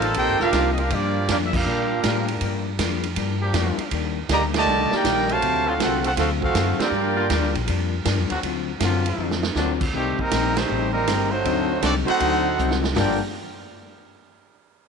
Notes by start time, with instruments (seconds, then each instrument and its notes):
Already playing: upright bass A1, trombone section G3 A#3 F4, trumpet section D#4 A#4 C5 F5
0.00 trombone section D#3 A#3 C4 A4, ride
0.14 upright bass A#1, hollow-body jazz guitar C3 A#3 D#4, trombone section A#3 D#4 G4, trumpet section D#4 A#4 C5 G5, kick, ride
0.18 hollow-body jazz guitar G4
0.28 upright bass G1
0.40 upright bass D#1, trumpet section D4 G4 A#4 F5, trombone section F4, snare
0.51 upright bass C2, hollow-body jazz guitar C3 A#3 D#4 G4, trombone section D#3 A#3 C4 D4, kick, snare, hi-hat pedal, ride
0.73 trumpet section D#5
0.78 trumpet section D4 G4 A#4 F5, trombone section F4, ride
0.90 hollow-body jazz guitar G2 F3 A#3 D4, upright bass G2, trombone section F3 A#3 D4, trumpet section A#3 F4 G4 D5, kick, ride
1.28 upright bass F2, hollow-body jazz guitar G2 F3 A#3 D4, trombone section F3 A#3 D4, trumpet section A#3 F4 G4 D5, kick, snare, hi-hat pedal, ride
1.45 trumpet section E5
1.53 trombone section A#3 D4 F4, trumpet section D4 G4 A#4 F5, kick, crash
1.65 hollow-body jazz guitar G2 F3 A#3 D4, upright bass A#2
2.03 hollow-body jazz guitar G2 F3 A#3 D4, upright bass A2, trombone section F3 D4 G4 A#4, kick, snare, hi-hat pedal, ride
2.28 ride
2.41 upright bass G2, hollow-body jazz guitar G2 F3 A#3 D4, kick, ride
2.78 upright bass F2, hollow-body jazz guitar G2 F3 A#3 D4, kick, snare, hi-hat pedal, ride
3.03 ride
3.16 upright bass G2, hollow-body jazz guitar G2 F3 A#3 D4, kick, ride
3.42 trombone section F3 A#3 D4 G4
3.53 upright bass F2, hollow-body jazz guitar G2 F3 A#3 D4, kick, snare, hi-hat pedal, ride
3.78 muted upright bass stroke, ride
3.91 upright bass D#2, hollow-body jazz guitar D#3 G3 A#3 D4, kick, ride
4.29 upright bass D2, trombone section D3 G3 A#3, hollow-body jazz guitar D#3 G3 A#3 D4, trumpet section G4 D5 D#5 A#5, kick, snare, hi-hat pedal, ride
4.54 trombone section A#2 D3 A3, trumpet section G4 D5 D#5 A5, snare, ride
4.66 upright bass C2, hollow-body jazz guitar D#3 G3 A#3
4.70 hollow-body jazz guitar D4
4.90 trombone section D#3 A#3 D#4 G4 D5, muted upright bass stroke, snare
4.95 trumpet section D#4 A#4 D5 G5
5.04 upright bass A#1, hollow-body jazz guitar D#3 G3 A#3 D4, kick, snare, hi-hat pedal, ride
5.29 trombone section C3 F#3 A3, trumpet section F#4 C5 F5 A5, ride
5.41 upright bass D2, hollow-body jazz guitar D3 F#3 C4 F4, kick, ride
5.65 trombone section D3 F#3 A3 C4 F4, trumpet section C4 F#4 A4 F5
5.78 upright bass C2, hollow-body jazz guitar D3 F#3 C4 F4, trombone section A3 C4 F#4, kick, snare, hi-hat pedal, ride
5.82 trumpet section C4 F4 A4 F#5
6.03 trombone section A3 C4 F#4, trumpet section C4 F4 A4 F#5, ride
6.15 upright bass D2, hollow-body jazz guitar D3 F#3 C4, trombone section A3 C4 F4, kick, snare, ride
6.19 trumpet section C4 F#4 A4 F5, hollow-body jazz guitar F4
6.40 trombone section A3 C4 F#4, trumpet section C4 A4, kick
6.44 trumpet section F#4 F5
6.54 upright bass F#2, hollow-body jazz guitar D3 F#3 C4 F4, snare, hi-hat pedal, ride
6.78 trombone section D3 G3 A#3 C4 D4 G4, trumpet section D5 G5, muted upright bass stroke, snare, ride
6.83 trumpet section F4 A#4
6.91 upright bass G2, hollow-body jazz guitar G2 F3 A#3 D4
7.16 trombone section D3 G3 A#3 F4
7.29 upright bass D#2, hollow-body jazz guitar G2 F3 A#3 D4, kick, snare, hi-hat pedal, ride
7.43 upright bass D2
7.55 upright bass A#1, ride
7.66 upright bass F2, hollow-body jazz guitar G2 F3 A#3 D4, kick, ride
8.04 hollow-body jazz guitar G2 F3 A#3 D4, upright bass G2, kick, snare, hi-hat pedal, ride
8.18 upright bass F2
8.30 upright bass D2, trombone section D3 F#3 C4 F#4, ride
8.43 upright bass D2, hollow-body jazz guitar D3 F#3 C4 F4, kick, ride
8.79 upright bass F#2, hollow-body jazz guitar D3 F#3 C4 F4, trombone section D3 F#3 C4 F4, kick, snare, hi-hat pedal, ride
9.06 ride
9.17 upright bass F2, hollow-body jazz guitar D3 F#3 C4 F4
9.31 snare
9.43 snare
9.55 upright bass D2, trombone section D3 F#3 C4 D4, hollow-body jazz guitar D3 F#3 C4 F4, snare, hi-hat pedal
9.81 kick, crash
9.92 upright bass C2, hollow-body jazz guitar A2 G3 C4 D#4, trombone section C3 D#3 G3, trumpet section A3 C4 G4, kick
10.17 trombone section D#3 G3 A#3, trumpet section G3 C4 D#4 A#4, kick
10.31 upright bass A#1, hollow-body jazz guitar A2 G3 C4 D#4, kick, snare, hi-hat pedal, ride
10.54 trombone section D#3 G3 C4, trumpet section A3 D#4 G4 C5, snare, ride
10.68 upright bass A1, hollow-body jazz guitar A2 G3 C4 D#4
10.92 trombone section D#3 G3 A#3, trumpet section G3 C4 D#4 A#4
11.07 upright bass G1, hollow-body jazz guitar A2 G3 C4 D#4, kick, snare, hi-hat pedal, ride
11.29 trombone section F#3 A3 C4, trumpet section A3 D#4 F#4 C5
11.44 upright bass D2, hollow-body jazz guitar D3 F#3 C4 D#4, grand piano F#3 C4 D4 D#4 A4, kick, ride
11.81 upright bass C2, hollow-body jazz guitar D3 F#3 C4 D#4, trombone section F#3 A3 D4, trumpet section C4 F#4 A4 D5, kick, snare, hi-hat pedal, ride
12.06 trombone section A3 C4 F#4, trumpet section D#4 A4 C5 F#5, ride
12.20 upright bass D2, hollow-body jazz guitar D3 F#3 C4 D#4, grand piano F#3 C4 D4 D#4 C5, kick, ride
12.58 upright bass C2, hollow-body jazz guitar D3 F#3 C4 D#4, hi-hat pedal
12.71 snare
12.84 snare
12.95 upright bass G1, hollow-body jazz guitar G2 F3 A#3 D4, trombone section G2 D3 F3 A#3, grand piano G3 A#3 D4 F4 A4, trumpet section F4 A#4 D5 G5, snare, floor tom, open hi-hat